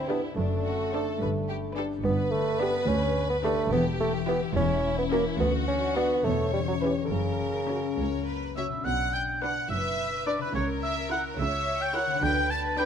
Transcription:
Already playing: D2 G2 B3 D4 E4 G4
0.09 D3 B3 D4 G4 B4
0.36 F#1 F#2 A3 D4
0.65 C4 F#4
0.93 D4 A4 C5
1.20 G1 G2 B4
1.49 B3 G4
1.76 D4 G4 A4 B4
2.04 G1 G2 B3 B4
2.31 D3 A3
2.60 B3 D4 G4 B4
2.88 D2 C#4 G4
3.16 B3
3.30 B3
3.44 D3 A3 D4 G4 B4
3.71 E1 E2 E3 B3 G4
4.00 A3 E4
4.27 B3 E4 G4 B4
4.55 E1 E2 E3 C#4 E4
4.84 C#4
4.98 B3
5.12 A#3 C#4 F#4 A#4
5.39 D2 D3 B3 F#4
5.68 C#4 D4
5.96 B3 D4 F#4 B4
6.25 E1 E2 E3 A3 C#5
6.53 G3 C#4
6.68 F#3
6.82 E3 C#4 G4 B4
7.04 D3
7.11 F#1 F#2 C#3 A#4
7.41 C#3
7.70 C#4 F#4 A#4
7.99 C#2 F#4 C#5
8.28 A#3 B4
8.57 C#3 C#4 F#4 C#5 E5
8.68 B2
8.72 B3
8.77 D4
8.81 F#4 F#5
8.85 B1 B2 F#5
9.13 G5
9.42 D4 B4 F#5
9.70 F#1 F#2 B4 E5
10.27 D4 B4 D5
10.37 C#3
10.42 A#3 B4
10.46 E4
10.51 F#4 C#5
10.55 C#2 C#3 A#4 C#5
10.83 E5
11.11 E4 A#4 F#5
11.39 C#2 C#3 C#5 E5
11.81 G5
11.95 E4 A#4 F#5
12.06 D3
12.11 B3
12.15 D4
12.20 D3 F#4 B4 G5
12.24 D2
12.51 A5
12.78 D4 B4 G5

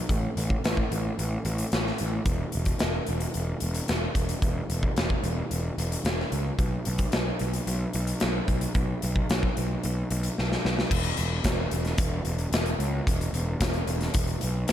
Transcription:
0.09 A1, kick, closed hi-hat
0.37 A1, closed hi-hat
0.50 kick
0.64 A1, snare, closed hi-hat
0.77 kick
0.91 A1, closed hi-hat
1.19 A1, closed hi-hat
1.45 A1, closed hi-hat
1.58 closed hi-hat
1.72 A1, snare, closed hi-hat
1.87 snare
1.98 A1, closed hi-hat
2.25 E1, kick, closed hi-hat
2.52 E1, closed hi-hat
2.65 kick, closed hi-hat
2.79 E1, snare, closed hi-hat
3.06 E1, closed hi-hat
3.20 closed hi-hat
3.34 E1, closed hi-hat
3.60 E1, closed hi-hat
3.74 closed hi-hat
3.88 E1, snare, closed hi-hat
4.15 E1, kick, closed hi-hat
4.29 closed hi-hat
4.42 E1, kick, closed hi-hat
4.70 E1, closed hi-hat
4.83 kick
4.97 E1, snare, closed hi-hat
5.10 kick
5.23 E1, closed hi-hat
5.51 E1, closed hi-hat
5.78 E1, closed hi-hat
5.92 closed hi-hat
6.05 E1, snare, closed hi-hat
6.20 snare
6.32 C#2, closed hi-hat
6.58 B1, kick, closed hi-hat
6.85 B1, closed hi-hat
6.98 kick, closed hi-hat
7.12 B1, snare, closed hi-hat
7.39 B1, closed hi-hat
7.53 closed hi-hat
7.67 B1, closed hi-hat
7.93 B1, closed hi-hat
8.07 closed hi-hat
8.20 B1, snare, closed hi-hat
8.48 B1, kick, closed hi-hat
8.61 closed hi-hat
8.75 B1, kick, closed hi-hat
9.02 B1, closed hi-hat
9.16 kick
9.29 B1, snare, closed hi-hat
9.43 kick
9.57 B1, closed hi-hat
9.83 B1, closed hi-hat
10.10 B1, closed hi-hat
10.23 closed hi-hat
10.38 B1, snare
10.52 snare
10.65 B1, snare
10.79 snare
10.91 E1, kick, crash
11.04 closed hi-hat
11.17 E1, closed hi-hat
11.44 E1, kick, snare, closed hi-hat
11.71 E1, closed hi-hat
11.85 snare, closed hi-hat
11.98 E1, kick, closed hi-hat
12.25 E1, closed hi-hat
12.38 closed hi-hat
12.52 E1, snare, closed hi-hat
12.66 closed hi-hat
12.79 C#2, closed hi-hat
13.07 E1, kick, closed hi-hat
13.21 closed hi-hat
13.33 E1, closed hi-hat
13.61 E1, kick, snare, closed hi-hat
13.74 closed hi-hat
13.87 E1, closed hi-hat
14.01 snare, closed hi-hat
14.14 E1, kick, closed hi-hat
14.28 closed hi-hat
14.41 B1, closed hi-hat
14.68 snare, closed hi-hat

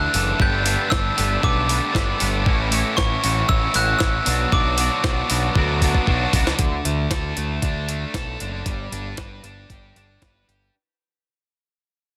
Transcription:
Already playing: D3 E3 A3 D4 A4 F#6
0.14 F#1 D3 E3 A3 D4 A4, open hi-hat
0.38 G1 G2 D3 G3 A3 B3 D4 A4 B4 G6, kick
0.64 G2 D3 G3 A3 B3 D4 A4 B4, open hi-hat
0.90 G1 G2 D3 G3 A3 D4 A4 B4 E6, kick, snare
1.15 G1 G2 D3 G3 A3 B3 D4 A4 B4, open hi-hat
1.42 B1 G2 D3 G3 A3 B3 D4 A4 B4 D6, kick
1.67 G2 D3 G3 A3 B3 D4 A4 B4, open hi-hat
1.92 G1 G2 D3 G3 A3 B3 D4 A4, kick, snare
1.97 B4
2.19 G1 G2 D3 G3 A3 B3 D4 A4 B4, open hi-hat
2.45 A1 A2 E3 A3 C#4 E4 F#4 C#5, kick
2.70 A2 E3 A3 C#4 E4 F#4 C#5, open hi-hat
2.97 A1 A2 E3 A3 E4 F#4 C#5 C#6, kick, snare
3.23 A1 A2 E3 A3 C#4 E4 F#4 C#5, open hi-hat
3.49 A1 E3 A3 C#4 E4 F#4 C#5 E6, kick
3.73 A1 A2 E3 A3 C#4 E4 F#4 C#5 F#6, open hi-hat
3.99 A1 A2 E3 A3 E4 F#4 C#5 E6, kick, snare
4.25 B1 B2 F#3 B3 D4 F#4 D5, open hi-hat
4.52 B1 B2 F#3 B3 D4 F#4 D5 D6, kick
4.78 B2 F#3 B3 D4 F#4 D5, open hi-hat
5.03 B1 B2 F#3 B3 D4 F#4 D5, kick, snare
5.30 B1 B2 F#3 B3 D4 F#4 D5, open hi-hat
5.55 D2 B2 F#3 B3 D4 F#4 D5, kick
5.81 B2 F#3 B3 D4 F#4 D5, kick, open hi-hat
5.94 kick
6.06 B1 B2 F#3 B3 D4 F#4 D5, kick
6.32 C#2 B2 F#3 B3 D4 F#4, kick, open hi-hat
6.36 D5
6.47 snare
6.59 D2 D3, kick, closed hi-hat
6.85 D2 A3, closed hi-hat
7.11 D2 A4, kick, snare, closed hi-hat
7.37 D2 A3, closed hi-hat
7.62 D2 D4, kick, closed hi-hat
7.89 A3, closed hi-hat
8.14 B1 A4, kick, snare, closed hi-hat
8.40 F#1 D4, closed hi-hat
8.66 G1 G3, kick, closed hi-hat
8.92 G1 D4, closed hi-hat
9.17 G1 B4, kick, snare, closed hi-hat
9.43 G1 D4, closed hi-hat
9.70 G1 G4, kick, closed hi-hat
9.96 G1 D4, closed hi-hat
10.22 G1 B4, kick, snare, closed hi-hat
10.48 G1 G4, closed hi-hat

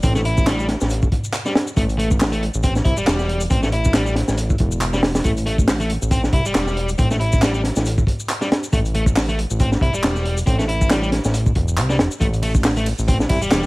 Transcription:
0.03 A1 C4, kick, closed hi-hat, shaker
0.15 A3, snare, shaker
0.25 E4, closed hi-hat
0.37 kick, shaker
0.47 G3, snare, clap, closed hi-hat, shaker
0.59 G3, shaker
0.68 snare, closed hi-hat
0.81 A1, snare, shaker
0.90 closed hi-hat, shaker
1.02 kick, shaker
1.12 kick, closed hi-hat
1.24 shaker
1.34 clap, closed hi-hat, shaker
1.46 G3, snare, shaker
1.55 snare, closed hi-hat
1.67 shaker
1.77 A1 A3, kick, closed hi-hat, shaker
1.89 closed hi-hat, shaker
1.98 A3, closed hi-hat
2.11 kick, shaker
2.20 snare, clap, open hi-hat, shaker
2.32 A3, closed hi-hat, shaker
2.43 closed hi-hat
2.54 A1, shaker
2.63 C4, kick, closed hi-hat, shaker
2.76 snare, shaker
2.85 C2 E4, kick, closed hi-hat
2.97 E1 G3, shaker
3.07 E1, snare, clap, closed hi-hat, shaker
3.19 snare, shaker
3.29 closed hi-hat
3.41 closed hi-hat, shaker
3.50 A1 C4, kick, closed hi-hat, shaker
3.63 A3, snare, shaker
3.72 E4, closed hi-hat
3.85 kick, shaker
3.94 G3, snare, clap, closed hi-hat, shaker
4.06 G3, shaker
4.15 snare, closed hi-hat
4.28 A1, snare, shaker
4.38 closed hi-hat, shaker
4.50 kick, shaker
4.58 E1, kick, closed hi-hat
4.72 shaker
4.81 clap, closed hi-hat, shaker
4.93 G3, snare, shaker
5.03 snare, open hi-hat
5.15 snare, open hi-hat, shaker
5.24 A1 A3, kick, closed hi-hat, shaker
5.37 closed hi-hat, shaker
5.46 A3, closed hi-hat
5.58 kick, shaker
5.68 snare, clap, open hi-hat, shaker
5.80 A3, closed hi-hat, shaker
5.90 closed hi-hat
6.02 A1, shaker
6.11 C4, kick, closed hi-hat, shaker
6.24 snare, shaker
6.33 C2 E4, kick, closed hi-hat
6.46 E1 G3, shaker
6.55 E1, snare, clap, closed hi-hat, shaker
6.67 snare, shaker
6.77 closed hi-hat
6.89 closed hi-hat, shaker
6.98 A1 C4, kick, closed hi-hat, shaker
7.11 A3, snare, shaker
7.20 E4, closed hi-hat
7.33 kick, shaker
7.42 G3, snare, clap, closed hi-hat, shaker
7.54 G3, shaker
7.64 snare, closed hi-hat
7.76 A1, snare, shaker
7.86 closed hi-hat, shaker
7.98 kick, shaker
8.07 kick, closed hi-hat
8.20 shaker
8.29 clap, closed hi-hat, shaker
8.41 G3, snare, shaker
8.52 snare, closed hi-hat
8.64 shaker
8.73 A1 A3, kick, closed hi-hat, shaker
8.85 closed hi-hat, shaker
8.95 A3, closed hi-hat
9.06 kick, shaker
9.16 snare, clap, open hi-hat, shaker
9.29 A3, closed hi-hat, shaker
9.39 closed hi-hat
9.50 A1, shaker
9.60 C4, kick, closed hi-hat, shaker
9.72 snare, shaker
9.81 C2 E4, kick, closed hi-hat
9.94 E1 G3, shaker
10.04 E1, snare, clap, closed hi-hat, shaker
10.16 snare, shaker
10.25 closed hi-hat
10.38 closed hi-hat, shaker
10.46 A1 C4, kick, closed hi-hat, shaker
10.59 A3, snare, shaker
10.68 E4, closed hi-hat
10.81 kick, shaker
10.90 G3, snare, clap, closed hi-hat, shaker
11.02 G3, shaker
11.12 snare, closed hi-hat
11.24 A1, snare, shaker
11.34 closed hi-hat, shaker
11.46 kick, shaker
11.55 E1, kick, closed hi-hat
11.68 shaker
11.77 C2, clap, closed hi-hat, shaker
11.90 G3, snare, shaker
11.99 E1, snare, closed hi-hat
12.11 shaker
12.20 A1 A3, kick, closed hi-hat, shaker
12.33 closed hi-hat, shaker
12.43 A3, closed hi-hat, ride
12.55 kick, shaker
12.64 snare, clap, open hi-hat, shaker
12.76 A3, closed hi-hat, shaker
12.86 closed hi-hat, ride
12.99 A1, shaker
13.08 C4, kick, closed hi-hat, shaker
13.20 snare, shaker
13.29 C2 E4, kick, closed hi-hat, ride
13.42 E1 G3, shaker
13.52 E1, snare, clap, closed hi-hat, shaker

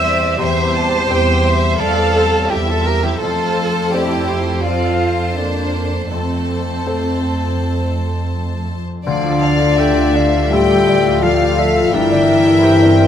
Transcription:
Already playing: E2 G3 C4 G4 C5 E5 E6
0.03 D5 E5 G5
0.20 C5 E5
0.38 E2 G3 C4 G4 C5 E5 G5 C6
0.58 C5 E5
0.73 E5 G5 A5
0.91 C5 E5
1.07 E2 C4 G4 C5 E5 G5
1.27 C5 E5
1.44 E5 G5
1.63 C5 E5
1.79 E2 A4 D5 E5 F5 G5 A5
1.98 C5 E5
2.17 C5 E5 G5
2.34 C5 E5
2.50 E2 E4 G4 E5 G5
2.67 F4 A4 C5 E5 A5
2.85 G4 A#4 E5 G5 A#5
3.03 F3 E4 G4 C5 E5 G5
3.09 C4
3.13 A4
3.18 F4 A4 C5 A5
3.22 F2 A3 C4 C5 A5
3.91 C4 E4 G4 A4 C5 D5 G5
4.25 C5
4.61 C4 F4 A4 C5 D5 F5
4.65 A5
4.99 C5
5.36 A#3 D4 D5
6.10 F2 A3 C4 A4 C5 A5
6.86 C4 A4 C5
9.05 D2 D3 F3 D4 A4 D5 F5
9.24 A3 F4
9.42 F4 D5 F5
9.60 F4 A4
9.78 A3 G4 A4 D5 E5 G5
9.97 F4
10.15 D5 F5 A5
10.34 F4 D6
10.51 A2 G3 F4 G4 D5 E5 G5 A5
10.70 F4 D6
10.87 F4 D5
11.05 F4 D5
11.21 F3 F4 G4 A4 D5 F5
11.41 A3 F4
11.58 F4 A4 D5 E5
11.76 A3 F4
11.93 G1 G2 E3 G3 E4 A#4 D5 E5 G5
12.12 D3 D4
12.28 G3 D4 A#4
12.46 D4 G4
12.62 C4 G4 A#4 C5
12.82 D4 D5
13.00 A#4 G5

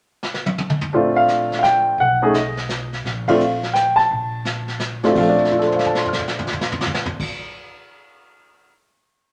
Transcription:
0.23 snare
0.34 snare
0.46 high tom
0.58 high tom
0.70 mid tom
0.81 floor tom
0.93 A#1 A3 C4 D4 F4, brush sweep
1.16 F5
1.28 snare, hi-hat pedal
1.52 snare
1.59 F5
1.63 G5, snare, hi-hat pedal
1.98 B1 F#5, brush sweep
2.22 A3 C#4 D#4 G#4
2.34 D#5, snare, hi-hat pedal
2.57 snare
2.69 snare, hi-hat pedal
2.93 snare
3.04 A#1, brush sweep, snare
3.28 A3 C4 D4 F4 F5, kick, ride
3.40 hi-hat pedal
3.63 snare
3.73 G5, snare, hi-hat pedal
3.96 A5, snare
4.10 A#1, brush sweep
4.45 snare, hi-hat pedal
4.68 snare
4.80 snare, hi-hat pedal
5.03 A#2 A3 C4 D4 F4, snare
5.12 A#1 F3, kick, crash
5.18 A3 F5
5.29 D4
5.38 floor tom
5.45 snare
5.51 F4, floor tom
5.59 A4, snare
5.67 C5
5.72 F5, floor tom
5.79 snare
5.85 A5, floor tom
5.95 C6, snare
6.05 F6, floor tom
6.13 snare
6.19 floor tom
6.28 snare
6.39 floor tom
6.47 snare
6.53 floor tom
6.61 snare
6.72 floor tom
6.81 snare
6.86 floor tom
6.94 snare
7.06 floor tom
7.20 kick, crash

